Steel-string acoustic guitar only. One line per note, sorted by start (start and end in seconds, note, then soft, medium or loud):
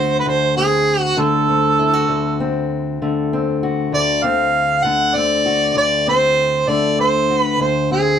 0.00 0.26 D2 medium
0.00 1.17 D3 medium
0.00 1.17 A3 medium
0.00 0.29 C4 medium
0.00 0.60 F#4 medium
0.26 2.08 D2 medium
0.57 1.49 C4 medium
1.17 3.01 D3 medium
1.17 3.02 A3 soft
1.49 2.40 C4 medium
1.79 1.93 E4 medium
1.93 3.62 F#4 medium
2.09 3.92 D2 medium
2.40 3.33 C4 medium
3.02 4.84 D3 medium
3.02 4.84 A3 medium
3.33 3.95 C4 medium
3.63 4.27 F#4 medium
3.92 5.75 D2 medium
4.24 5.15 C4 medium
4.84 6.66 D3 medium
4.84 6.68 A3 medium
5.15 6.06 C4 medium
5.46 7.29 F#4 medium
5.75 7.59 D2 medium
6.07 6.97 C4 medium
6.68 8.19 D3 medium
6.68 7.56 A3 soft
6.99 7.56 C4 medium
7.30 7.56 F#4 soft
7.60 8.19 D2 medium
7.91 8.19 C4 medium